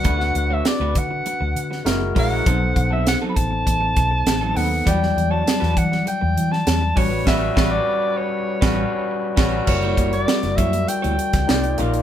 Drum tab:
CC |----------------|----------------|----------------|x-------------x-|
HH |x-x-x-x-x-x-x-o-|x-x-x-x-x-x-x-o-|x-x-x-x-x-x-x-o-|----------------|
SD |-o--o------oo---|----o-------o---|-o--oo-o---oo---|o-o------o----o-|
BD |o-----o-------o-|o-o---o-o-o-----|o-----o-------o-|o-o------o----o-|

CC |x---------------|
HH |-xxx-xxxxxxx-xxx|
SD |----oo-----oo---|
BD |o-o---o----o----|